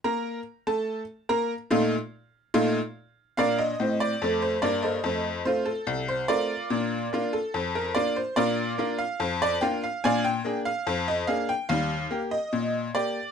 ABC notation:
X:1
M:2/4
L:1/16
Q:1/4=72
K:Bb
V:1 name="Honky-tonk piano"
[B,Bb]3 [A,Aa]3 [B,Bb]2 | [B,,A,EF]2 z2 [B,,A,EF]2 z2 | [Bdf] e2 d2 c d [Ace]- | [Ace]2 c A2 c [FBd]2- |
[FBd]3 A2 B d c | [FBd]3 f2 d g f | [df_a] g2 f2 e f g | f3 e3 d2 |]
V:2 name="Honky-tonk piano"
z8 | z8 | [B,,D]2 [A,,C]2 [F,,A,]2 [G,,B,]2 | [F,,A,]2 [A,CF]2 C,,2 [A,C]2 |
[B,,D]2 [B,DF]2 F,,2 [B,DF]2 | [B,,D]2 [B,DF]2 F,,2 [B,DF]2 | [B,,D]2 [B,D_A]2 F,,2 [B,DA]2 | [E,,G,]2 [B,G]2 B,,2 [B,G]2 |]